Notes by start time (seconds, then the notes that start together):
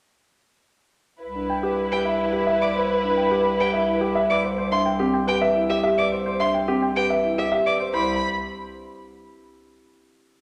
1.21 C2 E4 B4
1.35 D4
1.50 G5
1.63 G4
1.91 G4 B4 G5
2.05 E5
2.20 E4
2.33 G4
2.47 E5
2.61 B4 D5 D6
2.75 C5
3.04 D4
3.17 G5
3.31 G4
3.60 G4 B4 G5
3.73 E5
3.87 E4
4.01 G4
4.15 E5
4.29 B4 D5 D6
4.44 C5
4.58 C5
4.72 D4 E5 C6
4.85 G5
4.99 C4 G4
5.14 G5
5.27 G4 B4 G5
5.42 B4 E5
5.55 E4
5.70 G4 E5
5.83 G4 E5
5.98 B4 D5 D6
6.12 C5
6.26 C5
6.40 D4 E5 C6
6.54 G5
6.68 C4 G4
6.82 G5
6.95 G4 B4 G5
7.09 B4 E5
7.24 E4
7.38 G4 E5
7.52 G4 E5
7.66 B4 D5 D6
7.80 C5
7.94 C2 E4 C5 B5